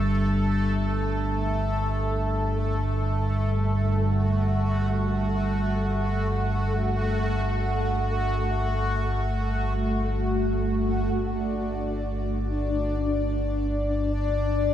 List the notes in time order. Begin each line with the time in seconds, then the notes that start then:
Already playing: G1 G2 A3 A4
3.74 F#4
11.08 G1 G2 D4 D5